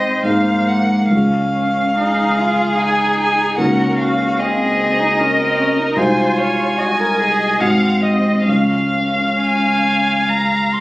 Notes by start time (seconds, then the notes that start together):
Already playing: G#2 G#3 C4 D#4 G#4 C5 D#5
0.23 G#2 G#3 A#3 D#4 G#4 F5
0.69 F#5
1.10 C#2 G#3 C#4 F4 G#4 F5
1.98 D#4 G#4
2.39 F4
2.79 D#4 G#5
3.19 G#5
3.57 C#2 A#3 C#4 D#4 F#4 A#4 F#5
3.98 F#4 F5
4.39 C4 G#4 D#5
5.00 D#4
5.19 C#4 A#4
5.41 C4
5.59 C#4
5.80 D#4
5.96 C2 G#3 D#4 F4 F#4 C5 G#5
6.37 C#5 G#5
6.78 F#4 D#5
7.00 A#4
7.19 G#4
7.59 G#2 G#3 C4 D#4 F#4 F5 F#5
8.02 D#5
8.48 C#2 G#3 C#4 F4 F5
9.41 G#5
10.26 G#3 A#5
10.73 C6